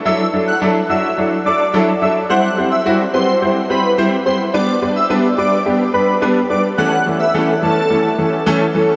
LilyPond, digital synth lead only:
\new Staff \with { instrumentName = "Digital synth lead" } { \time 4/4 \key d \major \tempo 4 = 107 e''8 r16 fis''16 r8 e''8 r8 d''8 r8 e''16 r16 | fis''8 r16 e''16 r8 c''8 r8 b'8 r8 c''16 r16 | d''8 r16 e''16 r8 d''8 r8 b'8 r8 d''16 r16 | fis''8 r16 e''16 r8 a'4 r4. | }